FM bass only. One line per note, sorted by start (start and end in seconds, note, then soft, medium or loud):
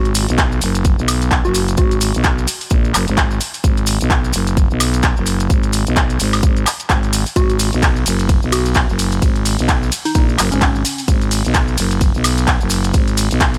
0.00 0.26 G#1 medium
0.29 0.60 B1 loud
0.62 0.96 F#1 medium
0.98 1.43 B1 loud
1.45 1.76 F#1 medium
1.78 2.12 G#1 loud
2.15 2.46 B1 medium
2.71 2.93 A#1 medium
2.94 3.06 F#1 loud
3.08 3.39 G#1 loud
3.64 3.99 G#1 medium
4.01 4.32 B1 loud
4.34 4.68 F#1 medium
4.71 5.15 B1 loud
5.17 5.48 F#1 loud
5.50 5.85 G#1 loud
5.87 6.18 B1 medium
6.20 6.41 G#1 medium
6.43 6.65 G#1 loud
6.90 7.24 G#1 loud
7.36 7.71 G#1 loud
7.73 8.04 B1 loud
8.06 8.40 F#1 loud
8.43 8.87 B1 medium
8.89 9.21 F#1 loud
9.22 9.57 G#1 loud
9.59 9.90 B1 medium
10.15 10.37 A#1 loud
10.38 10.50 F#1 loud
10.52 10.83 G#1 medium
11.08 11.43 G#1 loud
11.45 11.76 B1 loud
11.78 12.13 F#1 loud
12.15 12.59 B1 loud
12.61 12.93 F#1 loud
12.94 13.29 G#1 loud
13.31 13.58 B1 loud